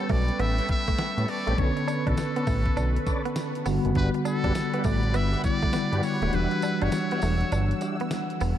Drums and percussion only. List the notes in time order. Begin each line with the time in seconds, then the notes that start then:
0.09 kick, open hi-hat
0.28 closed hi-hat
0.39 closed hi-hat
0.58 closed hi-hat
0.69 kick, snare, closed hi-hat
0.88 kick, closed hi-hat
0.99 snare, closed hi-hat
1.18 closed hi-hat
1.28 open hi-hat
1.47 closed hi-hat
1.58 kick, closed hi-hat
1.77 closed hi-hat
1.88 closed hi-hat, tambourine
2.07 kick, closed hi-hat
2.17 snare, closed hi-hat, tambourine
2.36 closed hi-hat
2.47 kick, open hi-hat, tambourine
2.66 kick, closed hi-hat
2.77 closed hi-hat, tambourine
2.96 closed hi-hat
3.07 kick, snare, closed hi-hat, tambourine
3.25 closed hi-hat
3.36 snare, closed hi-hat, tambourine
3.55 closed hi-hat
3.66 open hi-hat, tambourine
3.85 closed hi-hat
3.95 kick, closed hi-hat
4.14 closed hi-hat
4.25 closed hi-hat, tambourine
4.44 kick, closed hi-hat
4.55 snare, closed hi-hat, tambourine
4.74 closed hi-hat
4.84 kick, open hi-hat, tambourine
5.03 closed hi-hat
5.14 closed hi-hat, tambourine
5.33 closed hi-hat
5.44 kick, snare, closed hi-hat, tambourine
5.62 kick, closed hi-hat
5.73 snare, closed hi-hat, tambourine
5.93 closed hi-hat
6.03 open hi-hat, tambourine
6.22 closed hi-hat
6.33 closed hi-hat
6.51 closed hi-hat
6.62 closed hi-hat, tambourine
6.81 closed hi-hat
6.92 snare, closed hi-hat, tambourine
7.11 closed hi-hat
7.22 open hi-hat, tambourine
7.41 closed hi-hat
7.52 closed hi-hat, tambourine
7.71 closed hi-hat
7.81 closed hi-hat, tambourine
8.00 closed hi-hat
8.11 snare, closed hi-hat, tambourine
8.30 closed hi-hat
8.41 open hi-hat, tambourine